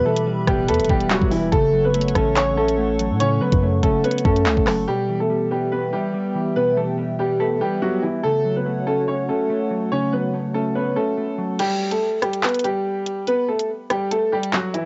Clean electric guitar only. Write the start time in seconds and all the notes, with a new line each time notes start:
Already playing: B2 G3 B3
0.05 E3
0.27 G3
0.48 B3
0.69 B4
0.90 B3
1.11 G3
1.32 E3
1.52 C#3
1.73 F#3
1.94 A3
2.15 C#4
2.36 C#5
2.57 C#4
2.78 A3
2.99 F#3
3.20 C#3
3.41 F#3
3.62 A3
3.84 C#4
4.04 C#5
4.24 C#4
4.46 A3
4.67 F#3
4.88 B2
5.09 E3
5.30 G3
5.51 B3
5.72 B4
5.93 B3
6.14 G3
6.35 E3
6.55 B2
6.76 E3
6.98 G3
7.19 B3
7.40 B4
7.61 B3
7.82 G3
8.03 E3
8.24 C#3
8.45 F#3
8.66 A3
8.87 C#4
9.08 C#5
9.28 C#4
9.49 A3
9.70 F#3
9.92 C#3
10.13 F#3
10.34 A3
10.55 C#4
10.76 C#5
10.96 C#4
11.18 A3
11.38 F#3